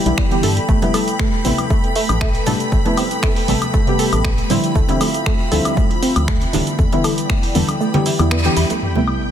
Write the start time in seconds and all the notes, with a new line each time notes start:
Already playing: B3 E4 D5 G5 B5
0.05 B1 D3 E3 G3 B3 E4, closed hi-hat, high conga
0.18 G3, finger snap, kick
0.31 D3 E3 G3 B3 G4, closed hi-hat
0.43 G2 A4, open hi-hat
0.57 closed hi-hat
0.69 A1 A3 A4 B4, kick, shaker
0.82 C3 G3 A3 B3 E4, closed hi-hat, high conga
0.94 A4, open hi-hat, high woodblock, shaker
1.08 closed hi-hat, shaker
1.19 A3, finger snap, kick, shaker
1.44 A1 C3 G3 A3 B3 C4 E4, open hi-hat, shaker
1.58 closed hi-hat, high conga, high woodblock, shaker
1.70 A3, kick, shaker
1.84 closed hi-hat
1.96 A3, open hi-hat, shaker
2.09 A1, closed hi-hat, high conga, high woodblock, shaker
2.21 A3, finger snap, kick, shaker
2.35 closed hi-hat
2.46 A2 C3 G3 A3 B3 D4 A4, open hi-hat, low conga, shaker
2.60 closed hi-hat, shaker
2.72 A1 A3, kick, shaker
2.85 C3 G3 A3 B3 E4, closed hi-hat, high conga
2.97 C4, open hi-hat, high woodblock, shaker
3.11 closed hi-hat, shaker
3.23 A3, finger snap, kick, shaker
3.36 open hi-hat
3.48 A1 C3 G3 A3 B3 A4, open hi-hat, shaker
3.62 closed hi-hat, high conga, high woodblock, shaker
3.74 A3, kick, shaker
3.86 C3 G3 A3 B3 G4, closed hi-hat
3.99 A4, open hi-hat, shaker
4.13 A1, closed hi-hat, high conga, high woodblock, shaker
4.25 A3, finger snap, kick, shaker
4.38 closed hi-hat
4.49 A2 D3 F3 G3 C4 E4, open hi-hat, shaker
4.64 closed hi-hat, shaker
4.75 D2 A3 F4 E5, kick, shaker
4.88 D3 F3 G3 C4 E4, closed hi-hat, high conga
5.01 A3, open hi-hat, high woodblock, shaker
5.14 closed hi-hat, shaker
5.26 A3, finger snap, kick, shaker
5.51 D2 D3 F3 G3 C4 E4 A4, open hi-hat, shaker
5.65 closed hi-hat, high conga, high woodblock, shaker
5.77 A3, kick, shaker
5.91 closed hi-hat
6.02 C4, open hi-hat, shaker
6.16 D2, closed hi-hat, high conga, high woodblock, shaker
6.28 A3, finger snap, kick, shaker
6.42 closed hi-hat
6.53 D1 D3 E3 G3 A3 B3 D4, open hi-hat, low conga, shaker
6.67 closed hi-hat, shaker
6.79 E2 A3 B3 E4 D5 G5, kick, shaker
6.92 D3 E3 G3 B3 E4, closed hi-hat, high conga
7.04 A4, open hi-hat, high woodblock, shaker
7.18 closed hi-hat, shaker
7.30 A3, finger snap, kick, shaker
7.43 open hi-hat
7.54 E2 D3 E3 G3 B3 A4, open hi-hat, shaker
7.68 closed hi-hat, high conga, high woodblock, shaker
7.80 A3, shaker
7.93 D3 E3 G3 B3 G4, closed hi-hat, low conga
8.06 E4, open hi-hat, shaker
8.19 E2 D3 E3 G3 B3 E4, closed hi-hat, high conga, high woodblock, shaker
8.31 B3, finger snap, shaker
8.44 D3 E3 G3 B3 G4, closed hi-hat
8.57 E2 E4, open hi-hat, shaker
8.70 A3, closed hi-hat, high conga, shaker
8.82 B3 A4 B4 G5, sub drop, shaker
8.95 C3 G3 A3 B3 E4, high conga
9.07 high woodblock, shaker
9.21 shaker